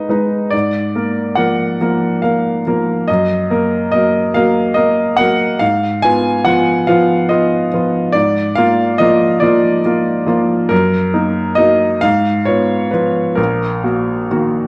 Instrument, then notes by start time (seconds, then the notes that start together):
upright piano
Already playing: G#3 D#4 B4 D#5
0.09 G#3 D#4 B4
0.51 G#2 D5
0.95 A#3 A#4
1.35 F3 A#3 A#4 F#5
1.81 F3 A#3 A#4
2.22 A#3 A#4 F5
2.67 F3 A#3 A#4
3.08 F#2 D#5
3.50 A#3 A#4
3.92 F#3 A#3 A#4 D#5
4.34 F#3 A#3 A#4 F5
4.74 A#3 A#4 D#5
5.17 F#3 A#3 A#4 F#5
5.59 G#2 F5
6.02 B3 F4 G#5
6.45 F3 B3 F4 F#5
6.87 F3 B3 F4 F5
7.29 B3 F4 D#5
7.73 F3 B3 F4
8.12 G#2 D5
8.55 A#3 F4 F5
8.98 F3 A#3 F4 D#5
9.40 F3 A#3 F4 D5
9.85 A#3 F4
10.26 F3 A#3 F4
10.69 F#2 A#4
11.14 A#3 D#4
11.55 F#3 A#3 D#4 D#5
12.01 G#2 F5
12.45 B3 F4 C#5
12.91 F3 B3 F4 B4
13.35 A#1 A#4
13.84 A#3 F#4
14.31 D#3 A#3 F#4